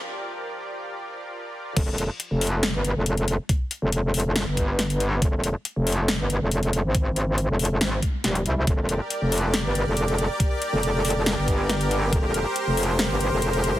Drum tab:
CC |--------------------------------|x-------------------------------|--------------------------------|--------------------------------|
HH |--------------------------------|x---x---x---ox--x---x---x-x-x---|x---x---x---ox--x---x---x-x-x---|x---x---x---ox--x---x---x-x-x---|
SD |--------------------------------|----------------o---------------|----------------o-------o-------|----------------o---------------|
BD |--------------------------------|o-------------------------------|o-------------------o-----------|o-------------------------------|

CC |--------------------------------|--------------------------------|--------------------------------|--------------------------------|
HH |x---x---x---ox--x---x---x-x-x---|x---x---x---ox--x---x---x-x-x---|x---x---x---ox--x---x---x-x-x---|x---x---x---ox--x---x---x-x-x---|
SD |----------------o-------o-------|----------------o---------------|----------------o-------o-------|----------------o---------------|
BD |o-------------------o-----------|o-------------------------------|o-------------------o-----------|o-------------------------------|